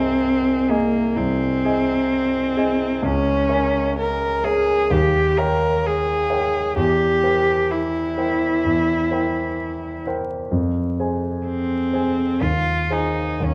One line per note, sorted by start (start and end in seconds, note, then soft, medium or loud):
0.00 1.16 C2 soft
0.00 0.72 C4 medium
0.00 0.66 G#4 soft
0.00 0.66 D#5 soft
0.00 0.66 G#5 soft
0.69 1.19 A#3 medium
0.69 1.12 G#4 soft
0.69 1.12 D#5 soft
0.69 1.12 G#5 soft
1.16 1.62 C2 soft
1.16 3.05 C4 medium
1.64 2.52 G#4 soft
1.64 2.52 D#5 soft
1.64 2.52 G#5 soft
2.57 2.98 G#4 soft
2.57 2.98 D#5 soft
2.57 2.99 G#5 soft
3.02 3.48 C#2 medium
3.02 3.97 C#4 medium
3.49 4.39 A#4 soft
3.49 4.39 C#5 soft
3.49 4.40 G#5 soft
3.98 4.46 A#4 medium
4.44 4.93 G#4 medium
4.44 4.86 A#4 soft
4.44 4.87 C#5 soft
4.44 4.87 G#5 soft
4.90 5.36 D#2 medium
4.90 5.39 G4 medium
5.37 5.87 A#4 medium
5.37 6.27 A#4 soft
5.37 6.27 C#5 soft
5.37 6.27 G5 soft
5.86 6.77 G#4 medium
6.29 6.72 A#4 soft
6.29 6.73 C#5 soft
6.29 6.73 G5 soft
6.76 7.22 E2 medium
6.76 7.72 G4 medium
7.23 8.13 A#4 soft
7.23 8.13 C5 soft
7.23 8.13 G5 soft
7.71 10.05 E4 medium
8.17 8.60 A#4 soft
8.17 8.60 C5 soft
8.17 8.60 G5 soft
8.65 9.10 E2 soft
9.11 10.01 A#4 soft
9.11 10.01 C5 soft
9.11 10.02 G5 soft
10.06 10.48 A#4 soft
10.06 10.48 C5 soft
10.06 10.48 G5 soft
10.51 10.96 F2 soft
10.99 11.88 G#4 soft
10.99 11.89 C5 soft
10.99 11.89 G#5 soft
11.46 12.44 C4 medium
11.93 12.37 G#4 soft
11.93 12.37 C5 soft
11.93 12.37 G#5 soft
12.41 12.88 D#2 soft
12.41 12.93 F4 medium
12.90 13.46 D#4 medium
12.90 13.36 G#4 soft
12.90 13.37 C5 soft
12.90 13.37 G#5 soft
13.40 13.54 D#2 soft
13.45 13.54 C#4 medium